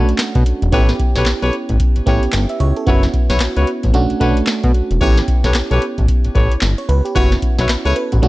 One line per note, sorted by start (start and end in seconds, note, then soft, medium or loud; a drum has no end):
0.00 0.75 A3 medium
0.00 0.72 C#4 medium
0.00 0.74 D4 medium
0.00 0.75 F#4 loud
0.09 closed hi-hat medium
0.18 snare loud
0.18 clap loud
0.18 closed hi-hat medium
0.35 0.44 B2 loud
0.35 kick loud
0.35 closed hi-hat soft
0.46 closed hi-hat medium
0.62 0.71 E1 loud
0.62 closed hi-hat soft
0.72 0.94 A1 loud
0.72 1.71 B3 medium
0.72 1.72 C#4 medium
0.72 1.72 E4 medium
0.72 0.90 G4 medium
0.72 1.72 G4 medium
0.72 0.90 A4 medium
0.72 0.90 B4 medium
0.72 0.90 C#5 loud
0.72 kick loud
0.72 closed hi-hat medium
0.89 snare medium
0.89 closed hi-hat soft
0.99 kick medium
0.99 closed hi-hat medium
1.16 1.24 B1 medium
1.16 1.28 G4 medium
1.16 1.28 A4 medium
1.16 1.28 B4 medium
1.16 1.28 C#5 medium
1.16 kick medium
1.16 snare medium
1.16 closed hi-hat medium
1.26 snare loud
1.26 clap medium
1.26 closed hi-hat medium
1.42 1.51 B1 medium
1.42 1.54 G4 medium
1.42 1.55 A4 medium
1.42 1.55 B4 medium
1.42 1.55 C#5 medium
1.42 closed hi-hat soft
1.53 closed hi-hat medium
1.69 1.78 A1 medium
1.69 kick medium
1.69 closed hi-hat soft
1.80 kick loud
1.80 closed hi-hat medium
1.96 2.00 A1 soft
1.96 closed hi-hat soft
2.06 2.19 A1 medium
2.06 2.81 B3 medium
2.06 2.81 C#4 medium
2.06 2.81 E4 medium
2.06 2.24 G4 medium
2.06 2.81 G4 medium
2.06 2.24 A4 medium
2.06 2.24 B4 medium
2.06 2.24 C#5 medium
2.06 kick medium
2.06 closed hi-hat medium
2.23 closed hi-hat medium
2.33 2.46 G1 loud
2.33 snare loud
2.33 clap medium
2.33 closed hi-hat medium
2.49 2.60 E5 medium
2.49 closed hi-hat soft
2.60 2.73 C#2 medium
2.60 2.76 C#5 medium
2.60 closed hi-hat medium
2.77 3.02 A4 medium
2.77 closed hi-hat soft
2.86 3.08 F#1 loud
2.86 3.86 B3 medium
2.86 3.86 C#4 medium
2.86 3.04 E4 medium
2.86 3.86 E4 medium
2.86 3.04 F#4 medium
2.86 3.86 F#4 medium
2.86 3.04 B4 medium
2.86 3.04 C#5 medium
2.86 kick loud
2.86 closed hi-hat medium
3.03 snare medium
3.03 closed hi-hat medium
3.14 kick medium
3.14 closed hi-hat medium
3.30 3.38 B1 medium
3.30 3.42 E4 medium
3.30 3.42 F#4 medium
3.30 3.42 B4 medium
3.30 3.42 C#5 medium
3.30 kick medium
3.30 snare medium
3.30 closed hi-hat medium
3.40 snare loud
3.40 clap medium
3.40 closed hi-hat medium
3.57 3.65 C#2 medium
3.57 3.69 E4 medium
3.57 3.69 F#4 medium
3.57 3.69 B4 medium
3.57 3.69 C#5 medium
3.57 closed hi-hat soft
3.67 closed hi-hat medium
3.83 3.92 A1 medium
3.83 kick medium
3.83 closed hi-hat soft
3.93 4.07 B1 loud
3.93 4.19 A3 medium
3.93 4.19 C#4 medium
3.93 4.19 D4 medium
3.93 4.19 F#4 loud
3.93 closed hi-hat medium
4.10 closed hi-hat soft
4.20 4.34 B1 medium
4.20 4.95 A3 medium
4.20 4.95 C#4 medium
4.20 4.38 D4 medium
4.20 4.95 D4 medium
4.20 4.95 F#4 medium
4.20 4.38 A4 medium
4.20 4.38 B4 medium
4.20 4.38 C#5 medium
4.20 kick medium
4.20 closed hi-hat medium
4.37 closed hi-hat medium
4.47 snare loud
4.47 clap loud
4.47 closed hi-hat medium
4.63 4.72 B2 loud
4.63 kick loud
4.63 closed hi-hat soft
4.74 closed hi-hat medium
4.91 4.99 E1 medium
4.91 closed hi-hat soft
5.01 5.22 A1 loud
5.01 6.00 B3 medium
5.01 6.00 C#4 medium
5.01 6.00 E4 medium
5.01 5.18 G4 medium
5.01 6.01 G4 medium
5.01 5.18 A4 medium
5.01 5.18 B4 medium
5.01 5.19 C#5 loud
5.01 kick loud
5.01 closed hi-hat medium
5.17 snare medium
5.17 closed hi-hat soft
5.28 kick medium
5.28 closed hi-hat medium
5.44 5.53 B1 medium
5.44 5.56 G4 medium
5.44 5.56 A4 medium
5.44 5.56 B4 medium
5.44 5.56 C#5 medium
5.44 kick medium
5.44 snare medium
5.44 closed hi-hat medium
5.54 snare loud
5.54 clap medium
5.54 closed hi-hat medium
5.71 5.79 B1 medium
5.71 5.83 G4 medium
5.71 5.83 A4 medium
5.71 5.83 B4 medium
5.71 5.83 C#5 medium
5.71 closed hi-hat soft
5.82 closed hi-hat medium
5.98 6.06 A1 medium
5.98 kick medium
5.98 closed hi-hat soft
6.08 kick medium
6.08 closed hi-hat medium
6.25 6.29 A1 soft
6.25 closed hi-hat soft
6.35 6.48 A1 medium
6.35 6.52 G4 medium
6.35 6.52 A4 medium
6.35 6.52 B4 medium
6.35 6.53 C#5 medium
6.35 kick medium
6.35 closed hi-hat medium
6.52 closed hi-hat medium
6.61 6.75 G1 loud
6.61 snare loud
6.61 clap loud
6.61 closed hi-hat medium
6.78 6.88 C#5 medium
6.78 closed hi-hat soft
6.89 7.02 C#2 loud
6.89 7.04 B4 medium
6.89 closed hi-hat medium
7.05 7.30 G4 medium
7.05 closed hi-hat soft
7.15 7.37 F#1 loud
7.15 8.14 B3 medium
7.15 8.14 C#4 medium
7.15 7.33 E4 medium
7.15 8.15 E4 medium
7.15 7.33 F#4 medium
7.15 7.43 F#4 medium
7.15 7.33 B4 medium
7.15 7.33 C#5 loud
7.15 kick loud
7.15 closed hi-hat medium
7.32 snare medium
7.32 closed hi-hat medium
7.42 kick medium
7.42 closed hi-hat medium
7.58 7.67 B1 medium
7.58 7.70 E4 medium
7.58 7.71 F#4 medium
7.58 7.71 B4 medium
7.58 7.71 C#5 medium
7.58 kick medium
7.58 snare medium
7.58 closed hi-hat medium
7.69 snare loud
7.69 clap medium
7.69 closed hi-hat medium
7.85 7.94 C#2 medium
7.85 7.97 E4 medium
7.85 7.97 F#4 medium
7.85 7.95 A4 medium
7.85 7.97 B4 medium
7.85 7.98 C#5 medium
7.85 closed hi-hat soft
7.96 8.11 B4 medium
7.96 closed hi-hat medium
8.12 8.21 A1 medium
8.12 8.22 F#4 medium
8.12 kick medium
8.12 closed hi-hat soft
8.22 8.28 B1 loud
8.22 8.28 A3 medium
8.22 8.28 C#4 medium
8.22 8.28 D4 medium
8.22 8.28 F#4 loud
8.22 closed hi-hat medium